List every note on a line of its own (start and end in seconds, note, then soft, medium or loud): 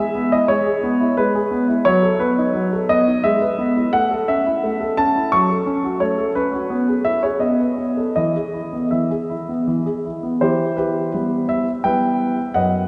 0.00 0.16 G#4 soft
0.00 0.32 E5 medium
0.15 0.33 B3 soft
0.32 0.51 E4 soft
0.32 0.50 D#5 medium
0.48 0.66 G#3 soft
0.48 1.14 C#5 medium
0.66 0.85 G#4 soft
0.83 1.02 B3 soft
1.00 1.19 E4 soft
1.17 1.35 G#3 soft
1.17 1.86 B4 medium
1.35 1.53 G#4 soft
1.51 1.70 B3 soft
1.68 1.86 E4 soft
1.85 2.03 F#3 medium
1.85 2.20 C#5 medium
2.03 2.21 A4 soft
2.19 2.39 B3 soft
2.19 2.86 B4 medium
2.38 2.56 D#4 soft
2.55 2.72 F#3 soft
2.73 2.91 A4 soft
2.89 3.08 B3 soft
2.89 3.24 D#5 medium
3.07 3.25 D#4 soft
3.24 3.41 G#3 medium
3.24 3.93 E5 medium
3.42 3.60 B4 soft
3.58 3.77 B3 soft
3.76 3.94 E4 soft
3.93 4.10 A3 soft
3.93 4.14 F#5 medium
4.11 4.29 A4 soft
4.28 4.47 C#4 soft
4.28 4.97 E5 medium
4.46 4.64 E4 soft
4.63 4.80 A3 soft
4.80 4.98 A4 soft
4.97 5.16 C#4 soft
4.97 5.32 A5 medium
5.16 5.32 E4 soft
5.32 5.49 F#3 soft
5.32 6.01 C#6 medium
5.49 5.67 A4 soft
5.66 5.85 C#4 soft
5.84 6.01 F#4 soft
6.00 6.18 A3 soft
6.00 6.32 C#5 medium
6.18 6.36 A4 soft
6.35 6.54 C#4 soft
6.35 7.02 B4 medium
6.53 6.71 F#4 soft
6.70 6.87 B3 soft
6.88 7.07 G#4 soft
7.05 7.24 E4 soft
7.05 7.23 E5 medium
7.23 7.42 G#4 soft
7.23 7.42 C#5 medium
7.40 7.59 B3 soft
7.40 8.14 D#5 soft
7.60 7.80 B4 soft
7.78 7.99 B3 soft
7.97 8.17 A4 soft
8.16 8.35 E3 soft
8.16 8.88 D#5 medium
8.35 8.56 G#4 soft
8.53 8.74 E4 soft
8.73 8.93 B3 soft
8.91 9.10 E3 soft
8.91 10.05 E5 soft
9.11 9.31 G#4 soft
9.30 9.50 E4 soft
9.49 9.69 B3 soft
9.67 9.86 E3 soft
9.86 10.06 G#4 soft
10.05 10.25 E4 soft
10.23 10.42 B3 soft
10.41 11.11 E3 soft
10.41 10.75 E4 soft
10.41 10.75 G4 soft
10.41 10.77 C5 medium
10.77 11.13 E4 soft
10.77 11.45 G4 soft
10.77 11.48 B4 soft
11.14 11.65 G3 soft
11.14 11.65 B3 soft
11.14 11.65 E4 soft
11.49 11.70 E5 medium
11.84 12.36 G3 soft
11.84 12.36 B3 soft
11.84 12.36 E4 soft
11.84 12.52 B4 soft
11.84 12.52 E5 soft
11.84 12.55 G5 medium
12.54 12.88 F#2 soft
12.54 12.88 B4 soft
12.54 12.88 D#5 soft
12.54 12.88 F#5 medium